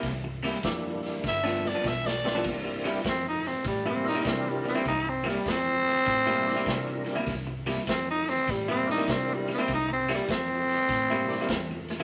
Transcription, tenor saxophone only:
1.28 1.69 E5 medium
1.67 1.89 D5 medium
1.87 2.07 E5 medium
2.06 2.44 D5 medium
3.08 3.26 C4 medium
3.28 3.49 D#4 medium
3.48 3.66 C4 medium
3.67 3.86 G3 medium
3.89 4.07 C4 medium
4.09 4.30 D#4 medium
4.29 4.51 C4 medium
4.50 4.67 G3 medium
4.69 4.87 C4 medium
4.88 5.11 D#4 medium
5.09 5.31 C4 medium
5.30 5.51 G3 medium
5.50 7.25 C4 loud
7.90 8.08 C4 medium
8.11 8.31 D#4 medium
8.30 8.52 C4 medium
8.51 8.69 G3 medium
8.70 8.89 C4 medium
8.91 9.13 D#4 medium
9.12 9.35 C4 medium
9.34 9.51 G3 medium
9.54 9.71 C4 medium
9.74 9.91 D#4 medium
9.93 10.10 C4 medium
10.14 10.31 G3 medium
10.32 12.03 C4 loud

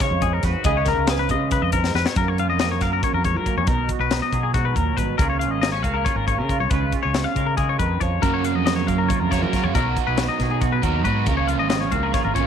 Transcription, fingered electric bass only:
0.11 0.41 F2 medium
0.43 0.53 F2 medium
0.64 0.95 C#2 loud
0.97 1.31 C#2 medium
1.30 1.60 C#3 medium
1.62 1.92 F2 medium
1.95 2.05 F2 medium
2.16 2.48 F#2 loud
2.48 2.81 F2 medium
2.81 3.01 F#2 medium
3.13 3.36 F2 medium
3.34 3.59 F#3 medium
3.57 3.67 F#2 medium
3.67 3.87 B1 loud
3.99 4.20 B1 medium
4.32 4.73 B2 medium
4.76 4.97 D#2 medium
4.97 5.17 G#1 medium
5.19 5.50 C#2 loud
5.50 5.84 G#1 medium
5.84 6.04 C#2 medium
6.16 6.39 G#1 medium
6.38 6.62 C#3 medium
6.60 6.70 C#2 medium
6.71 6.91 C#2 loud
7.05 7.25 C#2 medium
7.35 7.76 C#3 medium
7.79 8.00 F2 medium
8.01 8.21 F2 medium
8.23 8.55 F#2 loud
8.55 8.88 F2 medium
8.88 9.08 F#2 medium
9.21 9.44 F2 medium
9.43 9.65 F#3 medium
9.64 9.74 F#2 medium
9.74 9.95 B1 loud
10.08 10.28 B1 medium
10.39 10.80 B2 medium
10.83 11.05 D#2 medium
11.05 11.25 G#2 medium
11.27 11.60 C#2 loud
11.60 11.92 G#1 medium
11.92 12.12 C#2 medium
12.25 12.47 G#1 medium

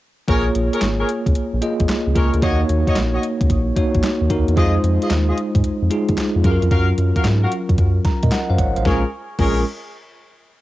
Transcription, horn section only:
0.28 0.46 G#4 medium
0.28 0.46 A#4 medium
0.28 0.46 C#5 loud
0.73 0.82 G#4 medium
0.73 0.82 A#4 medium
0.73 0.82 C#5 medium
0.99 1.08 G#4 medium
0.99 1.09 A#4 medium
0.99 1.09 C#5 medium
2.15 2.33 G#4 medium
2.15 2.34 A#4 medium
2.15 2.34 C#5 medium
2.42 2.60 F#4 loud
2.42 2.60 C#5 medium
2.42 2.61 D#5 loud
2.87 2.96 F#4 medium
2.87 2.96 C#5 medium
2.87 2.96 D#5 medium
3.14 3.23 F#4 medium
3.14 3.23 C#5 medium
3.14 3.23 D#5 medium
4.57 4.75 F4 loud
4.57 4.75 G#4 medium
4.57 4.75 D#5 loud
5.01 5.10 F4 medium
5.01 5.10 G#4 medium
5.01 5.10 D#5 medium
5.28 5.37 F4 medium
5.28 5.37 G#4 medium
5.28 5.37 D#5 medium
6.44 6.62 F#4 medium
6.44 6.62 A#4 medium
6.44 6.62 F5 medium
6.71 6.89 F#4 medium
6.71 6.89 A#4 medium
6.71 6.89 F5 loud
7.16 7.25 F#4 medium
7.16 7.25 A#4 medium
7.16 7.25 F5 medium
7.42 7.51 F#4 medium
7.42 7.51 A#4 medium
7.42 7.52 F5 medium
8.85 9.04 G#4 medium
8.85 9.04 A#4 medium
8.85 9.04 C#5 loud
9.39 9.60 G#4 medium
9.39 9.61 A#4 medium
9.39 9.61 C#5 loud

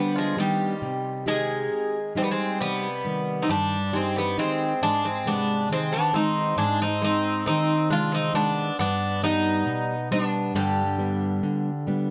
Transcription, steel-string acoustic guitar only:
0.00 0.35 D3 medium
0.00 0.36 G3 soft
0.00 0.36 B3 soft
0.00 0.37 D4 medium
0.37 0.73 G3 soft
0.37 0.73 B3 soft
0.37 0.74 D4 soft
0.82 1.68 C3 medium
1.26 1.98 C4 soft
1.26 1.98 D#4 medium
1.26 1.97 G4 soft
2.15 2.86 G3 soft
2.15 2.87 D#4 medium
2.61 3.46 C3 medium
3.04 3.76 D#3 soft
3.04 3.75 G3 soft
3.49 4.35 G2 medium
3.93 4.35 C4 soft
3.93 4.36 D#4 medium
3.93 4.64 G4 soft
4.37 4.73 D#3 soft
4.37 4.72 C4 soft
4.37 4.73 D#4 soft
4.81 5.67 G#2 medium
5.26 5.97 C3 soft
5.26 5.97 G#3 soft
5.69 6.56 D#3 medium
6.13 6.84 G#3 soft
6.13 6.84 C4 soft
6.13 6.85 D#4 medium
6.57 7.43 G#2 medium
7.02 7.73 G#3 soft
7.02 7.73 C4 soft
7.02 7.74 D#4 medium
7.47 8.32 D#3 medium
7.90 8.61 C3 soft
7.90 8.33 G#3 soft
8.34 8.70 D#3 soft
8.34 8.70 G#3 soft
8.79 9.65 G2 medium
9.23 9.94 G3 soft
9.23 9.94 B3 soft
9.23 9.94 D5 medium
9.66 10.52 B2 medium
10.11 10.82 G3 soft
10.11 10.82 B3 soft
10.11 10.82 D4 medium
10.55 11.40 G2 medium
10.98 11.69 G3 soft
10.98 11.69 B3 soft
10.98 11.70 D4 medium
11.43 12.11 D3 medium
11.87 12.11 G3 soft
11.87 12.11 B3 soft
11.87 12.11 D4 soft

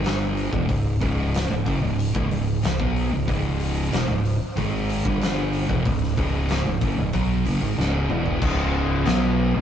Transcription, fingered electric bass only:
0.00 0.49 G1 loud
0.53 0.68 E1 loud
0.69 0.99 C#1 medium
1.02 1.47 C#1 loud
1.50 1.65 C#1 medium
1.66 1.81 F#1 medium
1.82 2.12 C#1 medium
2.15 2.30 C#1 medium
2.30 2.61 C#1 medium
2.63 2.78 C#1 medium
2.79 3.10 B1 medium
3.11 3.27 C#1 medium
3.28 3.89 C#1 loud
3.92 4.07 E1 medium
4.08 4.39 C#1 medium
4.57 5.02 G#1 medium
5.05 5.66 G1 medium
5.70 5.85 E1 loud
5.85 6.16 C#1 medium
6.17 6.62 C#1 medium
6.65 6.81 C#1 medium
6.82 6.97 F#1 medium
6.98 7.13 C#1 medium
7.14 7.44 B1 medium
7.46 7.61 F#1 medium
7.61 7.77 G#1 loud
7.77 8.08 C#1 medium
8.10 8.40 E1 loud
8.42 9.02 C#1 medium
9.06 9.51 B1 loud
9.54 9.61 C#1 medium

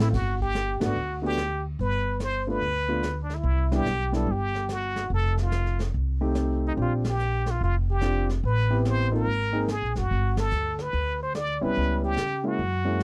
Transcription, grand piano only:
0.00 0.10 A3 medium
0.00 0.10 C4 medium
0.00 0.11 E4 medium
0.00 0.11 A4 medium
0.80 0.94 A3 medium
0.80 0.94 B3 medium
0.80 0.94 D4 medium
0.80 0.94 F#4 medium
1.22 1.35 A3 medium
1.22 1.36 B3 medium
1.22 1.36 D4 medium
1.22 1.36 F#4 medium
2.47 2.60 A3 medium
2.47 2.60 B3 soft
2.47 2.61 D4 medium
2.47 2.61 F4 medium
2.88 3.02 A3 medium
2.88 3.02 B3 medium
2.88 3.02 D4 medium
2.88 3.02 F4 medium
3.71 3.85 G3 medium
3.71 3.85 B3 medium
3.71 3.85 D4 medium
3.71 3.85 E4 medium
4.12 4.26 G3 medium
4.12 4.26 B3 medium
4.12 4.26 D4 medium
4.12 4.26 E4 medium
6.21 6.74 A3 medium
6.21 6.74 C4 medium
6.21 6.74 D#4 medium
6.21 6.74 G4 medium
6.77 7.01 C4 medium
6.77 7.01 D4 medium
6.77 7.01 F4 medium
6.77 7.02 G4 medium
8.01 8.26 C4 medium
8.01 8.26 D4 medium
8.01 8.26 F4 medium
8.01 8.26 G4 medium
8.70 9.09 B3 medium
8.70 9.09 C4 medium
8.70 9.09 E4 medium
8.70 9.09 G4 medium
9.12 9.25 A#3 medium
9.12 9.25 C4 medium
9.12 9.25 D#4 medium
9.12 9.25 F4 medium
9.52 9.66 A#3 medium
9.52 9.66 C4 medium
9.52 9.66 D#4 medium
9.52 9.66 G#4 medium
11.61 12.14 G3 medium
11.61 12.15 B3 medium
11.61 12.14 C#4 medium
11.61 12.15 E4 medium
12.44 12.57 G#3 medium
12.44 12.57 A#3 medium
12.44 12.57 C#4 medium
12.44 12.58 E4 medium
12.85 12.98 G#3 medium
12.85 12.98 A#3 medium
12.85 12.99 C#4 medium
12.85 12.99 E4 medium

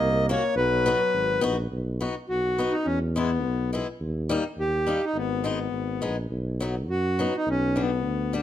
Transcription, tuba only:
0.00 0.36 C2 medium
0.56 0.93 B1 medium
1.13 1.42 G#1 medium
1.44 1.68 A#1 medium
1.71 2.09 B1 medium
2.30 2.67 B1 medium
2.87 3.46 E2 medium
3.45 3.82 B1 medium
4.00 4.38 D#2 medium
4.57 4.95 D#2 medium
5.14 5.71 G#1 medium
5.72 6.01 G#1 medium
6.04 6.28 A#1 medium
6.30 6.90 B1 medium
6.88 7.26 F#2 medium
7.46 8.06 B1 medium
8.04 8.42 D2 medium

